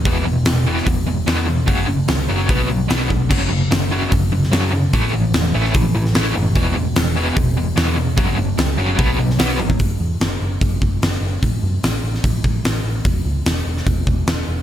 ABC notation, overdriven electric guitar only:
X:1
M:4/4
L:1/8
Q:1/4=148
K:Elyd
V:1 name="Overdriven electric guitar" clef=bass
[E,,B,,E,] [E,,B,,] [E,,B,,] [E,,B,,E,] [E,,B,,] [E,,B,,] [E,,B,,E,] [E,,B,,] | [F,,C,F,] [F,,C,] [F,,C,] [F,,C,F,] [B,,F,B,] [B,,F,] [B,,F,B,] [B,,F,] | [F,,C,F,] [F,,C,] [F,,C,] [F,,C,F,] [F,,C,] [F,,C,] [F,,C,F,] [F,,C,] | [=A,,E,=A,] [A,,E,] [A,,E,] [A,,E,A,] [A,,E,] [A,,E,] [A,,E,A,] [A,,E,] |
[E,,B,,E,] [E,,B,,] [E,,B,,] [E,,B,,E,] [E,,B,,] [E,,B,,] [E,,B,,E,] [E,,B,,] | [F,,C,F,] [F,,C,] [F,,C,] [F,,C,F,] [B,,F,B,] [B,,F,] [B,,F,B,] [B,,F,] | z8 | z8 |
z8 |]